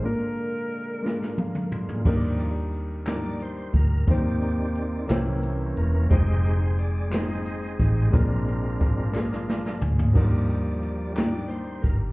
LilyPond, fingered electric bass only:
\new Staff \with { instrumentName = "Fingered electric bass" } { \clef bass \time 6/8 \key ees \major \tempo 4. = 59 r2. | ees,2~ ees,8 d,8 | ees,4. c,4 e,,8 | f,,2~ f,,8 a,,8 |
bes,,2~ bes,,8 d,8 | ees,2~ ees,8 g,,8 | }